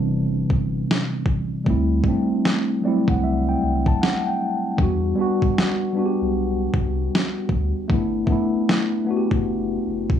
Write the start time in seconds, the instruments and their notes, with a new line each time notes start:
Already playing: tine electric piano C3 E3 G3 B3 C4 D4
0.00 sub bass F#1
0.50 sub bass G1, kick
0.91 snare
1.26 sub bass A1, kick
1.65 sub bass D2, tine electric piano G3 A3 C4, kick
1.70 tine electric piano E4
2.04 tine electric piano G3 A3, kick
2.08 tine electric piano C4 D4
2.45 snare
2.82 tine electric piano F#3 A3 D5
2.86 tine electric piano G3 C4 E4
3.08 sub bass C2, tine electric piano F#5, kick
3.24 tine electric piano E5
3.49 tine electric piano G5
3.63 sub bass C2
3.86 tine electric piano A5, kick
4.02 tine electric piano F#5, snare
4.27 tine electric piano G5
4.77 sub bass E2, tine electric piano G3 B3 D4, kick
4.83 tine electric piano F#4
5.15 tine electric piano G3 B3 D4
5.21 tine electric piano F#4
5.42 kick
5.58 snare
5.93 tine electric piano G3 B3 D4
5.99 tine electric piano F#4
6.06 tine electric piano G4
6.21 sub bass B1
6.74 sub bass C2, kick
7.15 snare
7.49 sub bass D2, kick
7.88 sub bass G1, tine electric piano A3 B3 D4, kick
7.94 tine electric piano E4
8.26 tine electric piano A3 B3 D4, kick
8.32 tine electric piano E4
8.69 snare
9.05 tine electric piano A3 B3 D4
9.11 tine electric piano F#4
9.17 tine electric piano G4
9.31 sub bass F#1, kick
9.87 sub bass F#1
10.10 kick